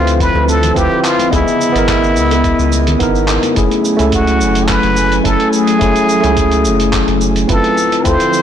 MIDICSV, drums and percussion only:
0, 0, Header, 1, 2, 480
1, 0, Start_track
1, 0, Key_signature, 3, "minor"
1, 0, Tempo, 560748
1, 1132, Time_signature, 4, 2, 24, 8
1, 7208, End_track
2, 0, Start_track
2, 0, Title_t, "Drums"
2, 62, Note_on_c, 9, 42, 56
2, 64, Note_on_c, 9, 82, 32
2, 148, Note_off_c, 9, 42, 0
2, 149, Note_off_c, 9, 82, 0
2, 173, Note_on_c, 9, 36, 94
2, 175, Note_on_c, 9, 42, 45
2, 176, Note_on_c, 9, 82, 44
2, 258, Note_off_c, 9, 36, 0
2, 260, Note_off_c, 9, 42, 0
2, 262, Note_off_c, 9, 82, 0
2, 303, Note_on_c, 9, 60, 69
2, 388, Note_off_c, 9, 60, 0
2, 410, Note_on_c, 9, 63, 57
2, 416, Note_on_c, 9, 82, 72
2, 495, Note_off_c, 9, 63, 0
2, 501, Note_off_c, 9, 82, 0
2, 540, Note_on_c, 9, 42, 53
2, 541, Note_on_c, 9, 64, 81
2, 541, Note_on_c, 9, 82, 29
2, 625, Note_off_c, 9, 42, 0
2, 627, Note_off_c, 9, 64, 0
2, 627, Note_off_c, 9, 82, 0
2, 653, Note_on_c, 9, 36, 89
2, 654, Note_on_c, 9, 42, 44
2, 655, Note_on_c, 9, 82, 45
2, 739, Note_off_c, 9, 36, 0
2, 739, Note_off_c, 9, 42, 0
2, 741, Note_off_c, 9, 82, 0
2, 785, Note_on_c, 9, 60, 57
2, 870, Note_off_c, 9, 60, 0
2, 894, Note_on_c, 9, 39, 69
2, 896, Note_on_c, 9, 82, 70
2, 980, Note_off_c, 9, 39, 0
2, 981, Note_off_c, 9, 82, 0
2, 1019, Note_on_c, 9, 63, 78
2, 1023, Note_on_c, 9, 42, 51
2, 1024, Note_on_c, 9, 82, 29
2, 1104, Note_off_c, 9, 63, 0
2, 1108, Note_off_c, 9, 42, 0
2, 1110, Note_off_c, 9, 82, 0
2, 1133, Note_on_c, 9, 36, 99
2, 1136, Note_on_c, 9, 42, 46
2, 1136, Note_on_c, 9, 60, 88
2, 1137, Note_on_c, 9, 82, 42
2, 1218, Note_off_c, 9, 36, 0
2, 1221, Note_off_c, 9, 42, 0
2, 1222, Note_off_c, 9, 60, 0
2, 1223, Note_off_c, 9, 82, 0
2, 1263, Note_on_c, 9, 82, 29
2, 1349, Note_off_c, 9, 82, 0
2, 1378, Note_on_c, 9, 82, 72
2, 1464, Note_off_c, 9, 82, 0
2, 1504, Note_on_c, 9, 42, 57
2, 1505, Note_on_c, 9, 82, 31
2, 1589, Note_off_c, 9, 42, 0
2, 1591, Note_off_c, 9, 82, 0
2, 1613, Note_on_c, 9, 36, 98
2, 1613, Note_on_c, 9, 63, 82
2, 1615, Note_on_c, 9, 39, 80
2, 1615, Note_on_c, 9, 42, 50
2, 1616, Note_on_c, 9, 60, 57
2, 1616, Note_on_c, 9, 82, 44
2, 1699, Note_off_c, 9, 36, 0
2, 1699, Note_off_c, 9, 63, 0
2, 1700, Note_off_c, 9, 39, 0
2, 1700, Note_off_c, 9, 42, 0
2, 1702, Note_off_c, 9, 60, 0
2, 1702, Note_off_c, 9, 82, 0
2, 1744, Note_on_c, 9, 82, 30
2, 1830, Note_off_c, 9, 82, 0
2, 1852, Note_on_c, 9, 82, 68
2, 1937, Note_off_c, 9, 82, 0
2, 1974, Note_on_c, 9, 60, 83
2, 1980, Note_on_c, 9, 42, 53
2, 1982, Note_on_c, 9, 82, 30
2, 2060, Note_off_c, 9, 60, 0
2, 2066, Note_off_c, 9, 42, 0
2, 2067, Note_off_c, 9, 82, 0
2, 2090, Note_on_c, 9, 42, 48
2, 2092, Note_on_c, 9, 82, 39
2, 2094, Note_on_c, 9, 36, 95
2, 2176, Note_off_c, 9, 42, 0
2, 2177, Note_off_c, 9, 82, 0
2, 2179, Note_off_c, 9, 36, 0
2, 2218, Note_on_c, 9, 82, 30
2, 2303, Note_off_c, 9, 82, 0
2, 2330, Note_on_c, 9, 82, 76
2, 2335, Note_on_c, 9, 63, 66
2, 2415, Note_off_c, 9, 82, 0
2, 2420, Note_off_c, 9, 63, 0
2, 2457, Note_on_c, 9, 42, 55
2, 2458, Note_on_c, 9, 82, 30
2, 2459, Note_on_c, 9, 60, 57
2, 2466, Note_on_c, 9, 64, 89
2, 2542, Note_off_c, 9, 42, 0
2, 2544, Note_off_c, 9, 60, 0
2, 2544, Note_off_c, 9, 82, 0
2, 2551, Note_off_c, 9, 64, 0
2, 2570, Note_on_c, 9, 42, 48
2, 2571, Note_on_c, 9, 82, 45
2, 2574, Note_on_c, 9, 36, 89
2, 2655, Note_off_c, 9, 42, 0
2, 2657, Note_off_c, 9, 82, 0
2, 2660, Note_off_c, 9, 36, 0
2, 2699, Note_on_c, 9, 82, 27
2, 2784, Note_off_c, 9, 82, 0
2, 2807, Note_on_c, 9, 39, 73
2, 2809, Note_on_c, 9, 82, 70
2, 2817, Note_on_c, 9, 60, 73
2, 2893, Note_off_c, 9, 39, 0
2, 2894, Note_off_c, 9, 82, 0
2, 2903, Note_off_c, 9, 60, 0
2, 2935, Note_on_c, 9, 42, 54
2, 2936, Note_on_c, 9, 82, 31
2, 2937, Note_on_c, 9, 63, 87
2, 3020, Note_off_c, 9, 42, 0
2, 3022, Note_off_c, 9, 63, 0
2, 3022, Note_off_c, 9, 82, 0
2, 3050, Note_on_c, 9, 42, 53
2, 3051, Note_on_c, 9, 82, 43
2, 3054, Note_on_c, 9, 36, 99
2, 3136, Note_off_c, 9, 42, 0
2, 3137, Note_off_c, 9, 82, 0
2, 3140, Note_off_c, 9, 36, 0
2, 3179, Note_on_c, 9, 42, 30
2, 3181, Note_on_c, 9, 82, 29
2, 3265, Note_off_c, 9, 42, 0
2, 3267, Note_off_c, 9, 82, 0
2, 3292, Note_on_c, 9, 82, 74
2, 3378, Note_off_c, 9, 82, 0
2, 3416, Note_on_c, 9, 42, 46
2, 3417, Note_on_c, 9, 82, 34
2, 3501, Note_off_c, 9, 42, 0
2, 3503, Note_off_c, 9, 82, 0
2, 3528, Note_on_c, 9, 42, 59
2, 3530, Note_on_c, 9, 82, 45
2, 3535, Note_on_c, 9, 36, 102
2, 3614, Note_off_c, 9, 42, 0
2, 3615, Note_off_c, 9, 82, 0
2, 3621, Note_off_c, 9, 36, 0
2, 3659, Note_on_c, 9, 42, 30
2, 3660, Note_on_c, 9, 82, 29
2, 3744, Note_off_c, 9, 42, 0
2, 3746, Note_off_c, 9, 82, 0
2, 3772, Note_on_c, 9, 82, 72
2, 3858, Note_off_c, 9, 82, 0
2, 3897, Note_on_c, 9, 42, 47
2, 3899, Note_on_c, 9, 82, 34
2, 3983, Note_off_c, 9, 42, 0
2, 3984, Note_off_c, 9, 82, 0
2, 4009, Note_on_c, 9, 39, 82
2, 4009, Note_on_c, 9, 42, 53
2, 4011, Note_on_c, 9, 82, 46
2, 4015, Note_on_c, 9, 36, 94
2, 4095, Note_off_c, 9, 39, 0
2, 4095, Note_off_c, 9, 42, 0
2, 4097, Note_off_c, 9, 82, 0
2, 4101, Note_off_c, 9, 36, 0
2, 4136, Note_on_c, 9, 42, 33
2, 4222, Note_off_c, 9, 42, 0
2, 4252, Note_on_c, 9, 82, 78
2, 4337, Note_off_c, 9, 82, 0
2, 4381, Note_on_c, 9, 42, 43
2, 4383, Note_on_c, 9, 82, 31
2, 4467, Note_off_c, 9, 42, 0
2, 4468, Note_off_c, 9, 82, 0
2, 4494, Note_on_c, 9, 36, 85
2, 4494, Note_on_c, 9, 42, 59
2, 4496, Note_on_c, 9, 82, 45
2, 4580, Note_off_c, 9, 36, 0
2, 4580, Note_off_c, 9, 42, 0
2, 4582, Note_off_c, 9, 82, 0
2, 4621, Note_on_c, 9, 42, 32
2, 4707, Note_off_c, 9, 42, 0
2, 4733, Note_on_c, 9, 82, 79
2, 4818, Note_off_c, 9, 82, 0
2, 4857, Note_on_c, 9, 42, 42
2, 4859, Note_on_c, 9, 82, 29
2, 4943, Note_off_c, 9, 42, 0
2, 4944, Note_off_c, 9, 82, 0
2, 4973, Note_on_c, 9, 42, 53
2, 4975, Note_on_c, 9, 36, 112
2, 4975, Note_on_c, 9, 82, 47
2, 5059, Note_off_c, 9, 42, 0
2, 5060, Note_off_c, 9, 82, 0
2, 5061, Note_off_c, 9, 36, 0
2, 5099, Note_on_c, 9, 42, 29
2, 5100, Note_on_c, 9, 82, 30
2, 5184, Note_off_c, 9, 42, 0
2, 5186, Note_off_c, 9, 82, 0
2, 5214, Note_on_c, 9, 82, 79
2, 5299, Note_off_c, 9, 82, 0
2, 5338, Note_on_c, 9, 42, 46
2, 5339, Note_on_c, 9, 82, 34
2, 5423, Note_off_c, 9, 42, 0
2, 5425, Note_off_c, 9, 82, 0
2, 5450, Note_on_c, 9, 42, 57
2, 5451, Note_on_c, 9, 82, 48
2, 5456, Note_on_c, 9, 36, 106
2, 5535, Note_off_c, 9, 42, 0
2, 5537, Note_off_c, 9, 82, 0
2, 5541, Note_off_c, 9, 36, 0
2, 5576, Note_on_c, 9, 42, 30
2, 5578, Note_on_c, 9, 82, 30
2, 5662, Note_off_c, 9, 42, 0
2, 5664, Note_off_c, 9, 82, 0
2, 5690, Note_on_c, 9, 82, 79
2, 5775, Note_off_c, 9, 82, 0
2, 5818, Note_on_c, 9, 42, 44
2, 5820, Note_on_c, 9, 82, 33
2, 5904, Note_off_c, 9, 42, 0
2, 5905, Note_off_c, 9, 82, 0
2, 5932, Note_on_c, 9, 39, 80
2, 5932, Note_on_c, 9, 42, 54
2, 5933, Note_on_c, 9, 82, 44
2, 5935, Note_on_c, 9, 36, 103
2, 6017, Note_off_c, 9, 39, 0
2, 6017, Note_off_c, 9, 42, 0
2, 6019, Note_off_c, 9, 82, 0
2, 6021, Note_off_c, 9, 36, 0
2, 6059, Note_on_c, 9, 42, 31
2, 6145, Note_off_c, 9, 42, 0
2, 6172, Note_on_c, 9, 82, 82
2, 6257, Note_off_c, 9, 82, 0
2, 6299, Note_on_c, 9, 42, 44
2, 6301, Note_on_c, 9, 82, 32
2, 6385, Note_off_c, 9, 42, 0
2, 6387, Note_off_c, 9, 82, 0
2, 6411, Note_on_c, 9, 42, 56
2, 6413, Note_on_c, 9, 82, 47
2, 6416, Note_on_c, 9, 36, 103
2, 6497, Note_off_c, 9, 42, 0
2, 6498, Note_off_c, 9, 82, 0
2, 6501, Note_off_c, 9, 36, 0
2, 6541, Note_on_c, 9, 42, 32
2, 6626, Note_off_c, 9, 42, 0
2, 6655, Note_on_c, 9, 82, 78
2, 6740, Note_off_c, 9, 82, 0
2, 6782, Note_on_c, 9, 42, 42
2, 6783, Note_on_c, 9, 82, 30
2, 6867, Note_off_c, 9, 42, 0
2, 6869, Note_off_c, 9, 82, 0
2, 6892, Note_on_c, 9, 42, 54
2, 6894, Note_on_c, 9, 82, 48
2, 6895, Note_on_c, 9, 36, 112
2, 6978, Note_off_c, 9, 42, 0
2, 6979, Note_off_c, 9, 82, 0
2, 6981, Note_off_c, 9, 36, 0
2, 7019, Note_on_c, 9, 42, 31
2, 7021, Note_on_c, 9, 82, 33
2, 7105, Note_off_c, 9, 42, 0
2, 7106, Note_off_c, 9, 82, 0
2, 7132, Note_on_c, 9, 82, 77
2, 7208, Note_off_c, 9, 82, 0
2, 7208, End_track
0, 0, End_of_file